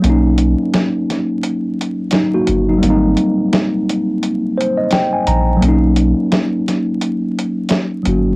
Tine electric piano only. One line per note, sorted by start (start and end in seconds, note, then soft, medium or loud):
0.00 2.06 F#3 medium
0.00 2.08 A#3 medium
0.06 2.10 C#4 medium
0.06 2.12 D#4 medium
2.15 2.33 F#3 soft
2.15 2.33 D#4 medium
2.34 2.67 A#3 medium
2.34 2.66 F#4 medium
2.69 3.02 F#3 soft
2.69 2.89 D#4 medium
2.78 5.55 G3 medium
2.78 5.57 A#3 medium
2.86 5.59 C4 medium
2.86 5.61 D#4 medium
4.58 4.76 C5 medium
4.77 4.91 D#5 medium
4.93 5.11 G5 medium
5.13 5.26 G#5 medium
5.27 5.60 A#5 medium
5.57 7.99 F#3 medium
5.61 8.01 A#3 medium
5.61 8.03 C#4 medium
5.68 8.05 D#4 medium
8.03 8.36 F#3 medium
8.03 8.36 A#3 soft
8.03 8.36 C#4 soft
8.09 8.36 F#4 medium